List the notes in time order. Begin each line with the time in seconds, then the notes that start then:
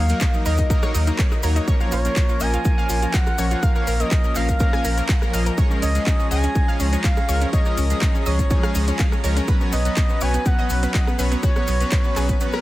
Already playing: D#2 F5 A#5
0.09 F#3 A#3 D#4 A#4, closed hi-hat, cabasa
0.20 F#3 A#3 D#4 A#4, kick, clap, closed hi-hat, cabasa
0.34 D#4, cabasa
0.45 D#2 F#3 A#3 D#4 A#4 D#5, open hi-hat, cabasa
0.57 D#4, kick, closed hi-hat, cabasa
0.70 F#3 A#3 D#4 A#4, kick, closed hi-hat, cabasa
0.83 F#3 A#3 D#4 A#4 C#5, cross-stick, cabasa
0.94 D#2 D#4, open hi-hat, cabasa
1.07 F#3 A#3 D#4 A#4, closed hi-hat, cabasa
1.19 F#3 A#3 D#4 A#4 C#5, kick, clap, closed hi-hat, cabasa
1.32 D#4, cross-stick, cabasa
1.43 D#2 F#3 A#3 D#4 A#4 C#5, open hi-hat, cabasa
1.56 D#4, closed hi-hat, cabasa
1.68 F3 A#3 C#4 A#4 C#5, kick, closed hi-hat, cabasa
1.80 F3 A#3 C#4 F4 C#5, cabasa
1.92 A#1 F4 C#5, open hi-hat, cabasa
2.05 F3 A#3 C#4 A#4, closed hi-hat, cabasa
2.16 F3 A#3 C#4 F4 A#4, kick, clap, closed hi-hat, cabasa
2.29 F4, cabasa
2.40 A#1 F3 A#3 C#4 A#4 D#5 G#5, open hi-hat, cabasa
2.53 F4, closed hi-hat, cabasa
2.65 F3 A#3 C#4 F4 A#4, kick, closed hi-hat, cabasa
2.78 F3 A#3 C#4 A#4 F5, cabasa
2.89 A#1 F4, open hi-hat, cabasa
3.02 F3 A#3 C#4 F4 A#4, closed hi-hat, cabasa
3.13 F3 A#3 C#4 A#4 F5 F#5, kick, clap, closed hi-hat, cabasa
3.27 F4, cross-stick, cabasa
3.38 A#1 F3 A#3 C#4 C#5, open hi-hat, cabasa
3.51 F4, closed hi-hat, cabasa
3.63 F3 A#3 C#4 A#4 F5, kick, closed hi-hat, cabasa
3.75 F3 A#3 C#4 A#4 C#5, cabasa
3.87 A#1 A#4, open hi-hat, cabasa
4.00 F3 A#3 C#4 A#4 D#5, closed hi-hat, cabasa
4.11 F3 A#3 C#4 A#4, kick, clap, closed hi-hat, cabasa
4.24 A#4, cabasa
4.35 A#1 F3 A#3 C#4 A#4 F5, clap, open hi-hat, cabasa
4.49 A#4, kick, closed hi-hat, cabasa
4.60 F3 A#3 C#4 A#4, kick, closed hi-hat, cabasa
4.73 F3 A#3 C#4 A#4 G#5, cross-stick, cabasa
4.85 A#1 A#4, open hi-hat, cabasa
4.98 F3 A#3 C#4 A#4, closed hi-hat, cabasa
5.09 F#5, kick, clap, closed hi-hat, cabasa
5.22 F3 A#3 C#4 A#4, cross-stick, cabasa
5.33 A#1 F3 A#3 C#4 D#5 F5, open hi-hat, cabasa
5.46 A#4, closed hi-hat, cabasa
5.58 F3 G#3 C#4 G#4 C#5, kick, closed hi-hat, cabasa
5.71 F3 G#3 C#4 A#4, cabasa
5.82 C#2 C#4 D#5, open hi-hat, cabasa
5.95 F3 G#3 C#4 G#4, closed hi-hat, cabasa
6.06 F3 G#3 C#4 G#4, kick, clap, closed hi-hat, cabasa
6.19 C#4, cabasa
6.31 C#2 F3 G#3 C#4 G#4 D#5 G#5, open hi-hat, cabasa
6.43 C#4, closed hi-hat, cabasa
6.55 F3 G#3 C#4 G#4, kick, closed hi-hat, cabasa
6.68 F3 G#3 C#4 G#4 F5, cabasa
6.80 C#2 C#4, open hi-hat, cabasa
6.93 F3 G#3 C#4 G#4, closed hi-hat, cabasa
7.04 F3 G#3 C#4 G#4 F5, kick, clap, closed hi-hat, cabasa
7.17 C#4, cross-stick, cabasa
7.29 C#2 F3 G#3 C#4 A#4 C#5, open hi-hat, cabasa
7.41 C#4, closed hi-hat, cabasa
7.53 F3 G#3 C#4 G#4 C#5 D#5, kick, closed hi-hat, cabasa
7.65 F3 G#3 C#4 A#4, cabasa
7.77 C#2 C#4, open hi-hat, cabasa
7.90 F3 G#3 C#4 G#4, closed hi-hat, cabasa
8.01 F3 G#3 C#4 G#4, kick, clap, closed hi-hat, cabasa
8.15 C#4, cabasa
8.26 C#2 F3 G#3 C#4 G#4 C#5 D#5, open hi-hat, cabasa
8.39 C#4, kick, closed hi-hat, cabasa
8.50 F3 G#3 C#4 G#4, kick, closed hi-hat, cabasa
8.63 F3 G#3 C#4 G#4 F5, cross-stick, cabasa
8.75 C#2 C#4, open hi-hat, cabasa
8.88 F3 G#3 C#4 G#4, closed hi-hat, cabasa
8.99 F3 G#3 C#4 G#4 F5, kick, clap, closed hi-hat, cabasa
9.12 C#4, cross-stick, cabasa
9.24 C#2 F3 G#3 C#4 A#4 C#5, open hi-hat, cabasa
9.37 C#4, closed hi-hat, cabasa
9.48 F#3 B3 C#4 B4, kick, closed hi-hat, cabasa
9.61 F#3 B3 C#4 C#5, cabasa
9.72 B1 B3 D#5, open hi-hat, cabasa
9.85 F#3 B3 C#4 B4, closed hi-hat, cabasa
9.97 F#3 B3 C#4 B4, kick, clap, closed hi-hat, cabasa
10.09 B3, cabasa
10.21 B1 F#3 B3 C#4 B4 C#5 G#5, open hi-hat, cabasa
10.34 B3, closed hi-hat, cabasa
10.45 F#3 B3 C#4 B4 F#5, kick, closed hi-hat, cabasa
10.59 F#3 B3 C#4 B4 D#5, cabasa
10.70 B1 B3, open hi-hat, cabasa
10.83 F#3 B3 C#4 B4, closed hi-hat, cabasa
10.94 F#3 B3 C#4 B4 D#5, kick, clap, closed hi-hat, cabasa
11.07 B3, cross-stick, cabasa
11.19 B1 F#3 B3 C#4 B4 C#5, open hi-hat, cabasa
11.32 B3, closed hi-hat, cabasa
11.43 F#3 B3 C#4 F#4 B4 C#5, kick, closed hi-hat, cabasa
11.56 F#3 B3 C#4 C#5, cross-stick, cabasa
11.68 B1 B3, open hi-hat, cabasa
11.80 F#3 B3 C#4 B4, closed hi-hat, cabasa
11.91 F#3 B3 C#4 B4, kick, clap, closed hi-hat, cabasa
12.04 B3, cabasa
12.16 B1 F#3 B3 C#4 G#4 B4, clap, open hi-hat, cabasa
12.29 B3, kick, closed hi-hat, cabasa
12.41 F#3 B3 C#4 B4, closed hi-hat, cabasa
12.53 F#3 B3 C#4 A#4 B4, cross-stick, cabasa